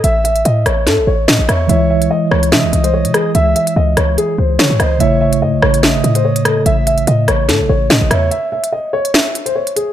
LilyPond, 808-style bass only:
\new Staff \with { instrumentName = "808-style bass" } { \clef bass \time 4/4 \key a \lydian \tempo 4 = 145 a,,4 a,8 a,,8 a,16 a,,16 a,,8 a,16 a,,16 e,8 | cis,4 r8 cis,8 cis16 cis,16 bis,,8. cis16 r8 | cis,8 r8 cis,8 cis,8 r8 cis,8 cis16 gis,16 cis,8 | a,,4 a,16 a,,16 a,,8. gis,,16 a,4. |
a,,4 a,8 a,,8 a,16 a,,16 a,,8 a,16 a,,16 e,8 | r1 | }